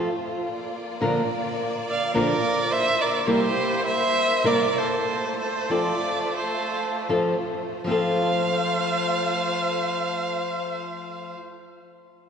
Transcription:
Already playing: violin section A3 F4 C5
0.46 violin section A#3 D5
1.01 nylon-string guitar A#2 D3 F3 A#3 D4 A#4
1.89 violin D5, erhu F5
2.14 nylon-string guitar A#2 D3 F3 A#3 D4 A#4, violin A#4, erhu D5
2.71 violin section A#3 E4 C5, violin C5, erhu E5
3.02 violin A#4, erhu D5
3.21 violin A#4, erhu D5
3.27 nylon-string guitar C3 G3 A#3 E4 A#4, violin G4, erhu C5
3.85 violin C5, erhu E5
4.44 nylon-string guitar C3 G3 A#3 E4 A#4, violin A#4, erhu D5
4.78 violin A4, erhu C5
5.04 violin section A3 F4
5.39 violin A4, erhu C5
5.70 nylon-string guitar F3 C4 F4 A4, violin A4, erhu D5
6.36 violin A4, erhu C5
7.09 nylon-string guitar F3 C4 F4 A4
7.84 nylon-string guitar F3 C4, violin section A3 F4 C5, violin C5, erhu F5
7.89 nylon-string guitar F4 A4

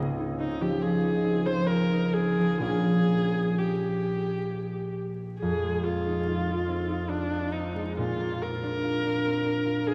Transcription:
Already playing: harp C4 D#4
0.00 harp C#2
0.19 harp D#4
0.40 harp C4, viola D#4
0.61 harp F3, viola G4
0.82 harp C4, viola G#4
1.03 harp D#4
1.24 harp C4
1.46 harp F3, viola C5
1.67 harp C4, viola A#4
1.92 harp D#4
2.13 harp C4, viola G#4
2.39 harp F3
2.59 harp A#1 F3 A#3 C#4 F4, viola G#4
3.58 viola G4
5.40 harp F2, viola G#4
5.64 harp G#3
5.84 harp C4, viola F4
6.07 harp D#4
6.27 harp F4
6.48 harp D#4
6.69 harp C4
6.89 harp D#4
7.09 viola D4, harp F4
7.32 harp D#4
7.52 harp C4, viola D#4
7.75 harp G#3
7.97 harp A#2, viola F4
8.20 harp A#3
8.42 harp C4, viola A#4
8.63 harp D4
8.84 harp F4
9.05 harp D4
9.26 harp C4
9.46 harp D4
9.66 harp F4
9.86 harp D4, viola G#4

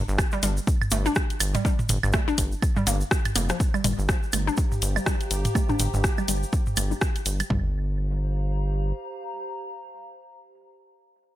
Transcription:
0.08 analog synth bass G1, shaker
0.18 kick, cross-stick, high woodblock, shaker
0.32 synth arpeggio sound G3, shaker
0.43 analog synth bass G1, synth arpeggio sound G3, closed hi-hat, shaker
0.57 shaker
0.67 kick, shaker
0.82 high tom, high woodblock, shaker
0.91 analog synth bass G1, synth arpeggio sound A3, closed hi-hat, shaker
1.06 synth arpeggio sound D4, shaker
1.15 kick, cross-stick, shaker
1.30 closed hi-hat, shaker
1.40 analog synth bass G1, closed hi-hat, high woodblock, shaker
1.55 synth arpeggio sound G3, closed hi-hat, mid tom, shaker
1.65 synth arpeggio sound G3, kick, shaker
1.79 mid tom, shaker
1.89 analog synth bass G1, closed hi-hat, mid tom, shaker
2.03 analog synth bass G1, high tom, high woodblock, shaker
2.13 synth arpeggio sound A3, kick, cross-stick, shaker
2.28 synth arpeggio sound D4, shaker
2.38 analog synth bass G1, kick, closed hi-hat, shaker
2.52 shaker
2.62 kick, high woodblock, shaker
2.76 synth arpeggio sound G3, high tom, shaker
2.87 analog synth bass G1, synth arpeggio sound A#3, closed hi-hat, shaker
3.01 shaker
3.11 kick, cross-stick, shaker
3.25 closed hi-hat, high tom, high woodblock, shaker
3.36 analog synth bass F1, synth arpeggio sound A#3, closed hi-hat, shaker
3.49 synth arpeggio sound F3, cross-stick, closed hi-hat, shaker
3.60 ambient pad G4, synth texture G4, kick, shaker
3.74 synth arpeggio sound G3, high woodblock, shaker
3.84 analog synth bass G1, synth arpeggio sound G3, closed hi-hat, mid tom, shaker
3.93 ambient pad A#5
3.97 analog synth bass G1, ambient pad F5, shaker
4.05 ambient pad C5, kick, cross-stick, shaker
4.23 shaker
4.33 analog synth bass G1, synth arpeggio sound A3, closed hi-hat, high woodblock, shaker
4.47 synth arpeggio sound D4, shaker
4.57 kick, shaker
4.72 high tom, shaker
4.82 analog synth bass G1, closed hi-hat, shaker
4.96 synth arpeggio sound G3, high woodblock, shaker
5.06 synth arpeggio sound G3, kick, cross-stick, shaker
5.21 closed hi-hat, shaker
5.31 analog synth bass G1, closed hi-hat, shaker
5.45 closed hi-hat, mid tom, shaker
5.55 synth arpeggio sound A3, kick, high woodblock, shaker
5.69 synth arpeggio sound D4, mid tom, shaker
5.79 analog synth bass G1, closed hi-hat, mid tom, shaker
5.94 analog synth bass G1, high tom, shaker
6.04 kick, cross-stick, shaker
6.18 synth arpeggio sound G3, high woodblock, shaker
6.28 analog synth bass G1, synth arpeggio sound G3, closed hi-hat, shaker
6.43 shaker
6.53 kick, shaker
6.66 high tom, shaker
6.77 analog synth bass G1, synth arpeggio sound A3, closed hi-hat, high woodblock, shaker
6.91 synth arpeggio sound D4, shaker
7.01 kick, cross-stick, shaker
7.16 closed hi-hat, shaker
7.26 analog synth bass G1, closed hi-hat, shaker
7.40 synth arpeggio sound G3, closed hi-hat, high woodblock, shaker
7.50 analog synth bass G1, synth arpeggio sound G3, ambient pad G4, kick, floor tom
7.59 ambient pad C5
7.67 ambient pad F5
7.73 ambient pad A#5

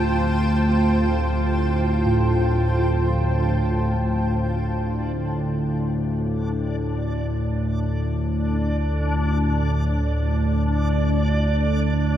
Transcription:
Already playing: synth drone D2 A2, ambient pad F4 C5 G5 A5
2.05 kettle gongs A2
3.94 synth drone D2 A2, synth texture D4 D5

